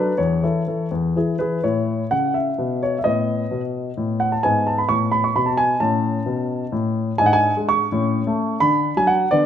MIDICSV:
0, 0, Header, 1, 2, 480
1, 0, Start_track
1, 0, Key_signature, 3, "major"
1, 0, Tempo, 485437
1, 182, Time_signature, 6, 3, 24, 8
1, 2098, Tempo, 460829
1, 6898, Tempo, 469851
1, 9686, End_track
2, 0, Start_track
2, 0, Title_t, "Grand piano"
2, 0, Program_c, 0, 0
2, 0, Note_on_c, 0, 54, 36
2, 0, Note_on_c, 0, 62, 34
2, 0, Note_on_c, 0, 69, 35
2, 0, Note_on_c, 0, 71, 64
2, 109, Note_off_c, 0, 54, 0
2, 115, Note_off_c, 0, 62, 0
2, 116, Note_off_c, 0, 69, 0
2, 174, Note_on_c, 0, 73, 58
2, 175, Note_off_c, 0, 71, 0
2, 183, Note_on_c, 0, 40, 47
2, 420, Note_off_c, 0, 40, 0
2, 425, Note_on_c, 0, 52, 32
2, 429, Note_on_c, 0, 64, 36
2, 432, Note_on_c, 0, 69, 38
2, 599, Note_off_c, 0, 52, 0
2, 602, Note_off_c, 0, 64, 0
2, 604, Note_off_c, 0, 69, 0
2, 666, Note_on_c, 0, 52, 32
2, 672, Note_on_c, 0, 64, 33
2, 675, Note_on_c, 0, 69, 35
2, 839, Note_off_c, 0, 52, 0
2, 843, Note_off_c, 0, 64, 0
2, 845, Note_off_c, 0, 69, 0
2, 903, Note_on_c, 0, 40, 43
2, 904, Note_off_c, 0, 73, 0
2, 1140, Note_off_c, 0, 40, 0
2, 1149, Note_on_c, 0, 52, 35
2, 1154, Note_on_c, 0, 64, 31
2, 1160, Note_on_c, 0, 68, 35
2, 1324, Note_off_c, 0, 52, 0
2, 1327, Note_off_c, 0, 64, 0
2, 1331, Note_off_c, 0, 68, 0
2, 1372, Note_on_c, 0, 71, 57
2, 1378, Note_on_c, 0, 52, 30
2, 1385, Note_on_c, 0, 64, 30
2, 1392, Note_on_c, 0, 68, 36
2, 1555, Note_off_c, 0, 52, 0
2, 1559, Note_off_c, 0, 64, 0
2, 1564, Note_off_c, 0, 68, 0
2, 1616, Note_on_c, 0, 73, 56
2, 1618, Note_on_c, 0, 45, 39
2, 1620, Note_off_c, 0, 71, 0
2, 1621, Note_on_c, 0, 64, 29
2, 1997, Note_off_c, 0, 45, 0
2, 2085, Note_on_c, 0, 78, 60
2, 2090, Note_on_c, 0, 49, 36
2, 2091, Note_off_c, 0, 73, 0
2, 2327, Note_on_c, 0, 76, 50
2, 2335, Note_off_c, 0, 78, 0
2, 2482, Note_off_c, 0, 49, 0
2, 2580, Note_on_c, 0, 47, 37
2, 2819, Note_off_c, 0, 76, 0
2, 2832, Note_on_c, 0, 73, 56
2, 2967, Note_off_c, 0, 47, 0
2, 2981, Note_off_c, 0, 73, 0
2, 2996, Note_on_c, 0, 76, 41
2, 3019, Note_off_c, 0, 64, 0
2, 3054, Note_on_c, 0, 75, 57
2, 3067, Note_off_c, 0, 76, 0
2, 3067, Note_on_c, 0, 59, 30
2, 3068, Note_on_c, 0, 45, 40
2, 3452, Note_off_c, 0, 45, 0
2, 3545, Note_on_c, 0, 47, 37
2, 3640, Note_off_c, 0, 75, 0
2, 3937, Note_off_c, 0, 47, 0
2, 4026, Note_on_c, 0, 45, 38
2, 4261, Note_on_c, 0, 78, 53
2, 4389, Note_on_c, 0, 81, 45
2, 4392, Note_off_c, 0, 78, 0
2, 4419, Note_off_c, 0, 45, 0
2, 4481, Note_off_c, 0, 59, 0
2, 4505, Note_on_c, 0, 80, 65
2, 4515, Note_on_c, 0, 59, 29
2, 4516, Note_off_c, 0, 81, 0
2, 4518, Note_on_c, 0, 44, 45
2, 4749, Note_on_c, 0, 81, 50
2, 4755, Note_off_c, 0, 80, 0
2, 4870, Note_on_c, 0, 83, 48
2, 4876, Note_off_c, 0, 81, 0
2, 4905, Note_off_c, 0, 44, 0
2, 4977, Note_on_c, 0, 85, 70
2, 4983, Note_on_c, 0, 45, 42
2, 4997, Note_off_c, 0, 83, 0
2, 5216, Note_on_c, 0, 83, 58
2, 5230, Note_off_c, 0, 85, 0
2, 5346, Note_on_c, 0, 85, 50
2, 5349, Note_off_c, 0, 83, 0
2, 5374, Note_off_c, 0, 45, 0
2, 5468, Note_on_c, 0, 47, 42
2, 5468, Note_on_c, 0, 83, 52
2, 5473, Note_off_c, 0, 85, 0
2, 5576, Note_on_c, 0, 81, 49
2, 5594, Note_off_c, 0, 83, 0
2, 5695, Note_on_c, 0, 80, 65
2, 5707, Note_off_c, 0, 81, 0
2, 5853, Note_off_c, 0, 47, 0
2, 5911, Note_off_c, 0, 59, 0
2, 5919, Note_off_c, 0, 80, 0
2, 5932, Note_on_c, 0, 81, 63
2, 5937, Note_on_c, 0, 45, 49
2, 5938, Note_on_c, 0, 61, 31
2, 6320, Note_off_c, 0, 45, 0
2, 6408, Note_on_c, 0, 47, 43
2, 6795, Note_off_c, 0, 47, 0
2, 6888, Note_off_c, 0, 81, 0
2, 6890, Note_on_c, 0, 45, 46
2, 7278, Note_off_c, 0, 45, 0
2, 7330, Note_off_c, 0, 61, 0
2, 7361, Note_on_c, 0, 80, 72
2, 7369, Note_on_c, 0, 62, 32
2, 7372, Note_on_c, 0, 44, 50
2, 7441, Note_on_c, 0, 78, 67
2, 7443, Note_off_c, 0, 80, 0
2, 7512, Note_on_c, 0, 80, 76
2, 7520, Note_off_c, 0, 78, 0
2, 7672, Note_off_c, 0, 44, 0
2, 7724, Note_off_c, 0, 80, 0
2, 7755, Note_on_c, 0, 56, 40
2, 7874, Note_on_c, 0, 85, 76
2, 8045, Note_off_c, 0, 56, 0
2, 8068, Note_off_c, 0, 62, 0
2, 8114, Note_on_c, 0, 45, 48
2, 8114, Note_on_c, 0, 61, 37
2, 8400, Note_off_c, 0, 45, 0
2, 8470, Note_on_c, 0, 57, 46
2, 8757, Note_off_c, 0, 57, 0
2, 8788, Note_off_c, 0, 61, 0
2, 8813, Note_on_c, 0, 83, 75
2, 8821, Note_on_c, 0, 50, 47
2, 8824, Note_on_c, 0, 62, 34
2, 8829, Note_off_c, 0, 85, 0
2, 9109, Note_off_c, 0, 50, 0
2, 9176, Note_off_c, 0, 83, 0
2, 9185, Note_on_c, 0, 54, 43
2, 9188, Note_on_c, 0, 80, 68
2, 9291, Note_on_c, 0, 78, 65
2, 9305, Note_off_c, 0, 80, 0
2, 9469, Note_off_c, 0, 54, 0
2, 9496, Note_off_c, 0, 62, 0
2, 9533, Note_on_c, 0, 74, 76
2, 9534, Note_off_c, 0, 78, 0
2, 9544, Note_on_c, 0, 59, 36
2, 9545, Note_on_c, 0, 50, 50
2, 9686, Note_off_c, 0, 50, 0
2, 9686, Note_off_c, 0, 59, 0
2, 9686, Note_off_c, 0, 74, 0
2, 9686, End_track
0, 0, End_of_file